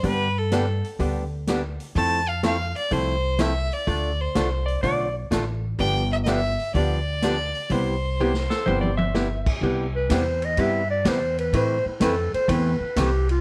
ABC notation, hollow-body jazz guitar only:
X:1
M:4/4
L:1/8
Q:"Swing" 1/4=125
K:C
V:1 name="Hollow-body jazz guitar"
[D,G,B,DG] z [D,G,B,DG] z [D,G,B,DG] z [D,G,B,DG] z | [F,A,CEA] z [F,A,CEA] z [F,A,CEA] z [F,A,CEA] z | [D,A,DFA] z [D,A,DFA] z [D,A,DFA] z [D,A,DFA] z | [D,F,B,DG] z [D,F,B,DG] z [D,F,B,DG] z [D,F,B,DG] z |
[C,G,B,EG] z [C,G,B,EG] z [C,G,B,EG] z [C,G,B,EG] z | [C,G,B,EG] z [C,G,B,EG] z [C,G,B,EG] z [C,G,B,EG] z | [E,A,CEB] z [E,A,CEB] z [E,A,CEB] z [E,A,CEB] z |]